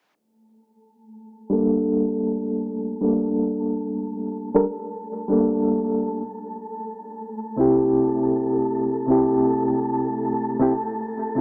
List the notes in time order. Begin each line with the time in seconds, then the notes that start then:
0.15 A3 A5
1.50 G3 A#3 D4 A4
3.01 G3 A#3 D4 A4
4.54 G3 D4 A4 A#4
5.28 G3 D4 A4
5.33 A#3
7.56 C3 C4 E4
7.61 G4
9.06 C3 C4 E4
9.11 G4
10.60 C3 C4 E4 G4
11.35 C3 C4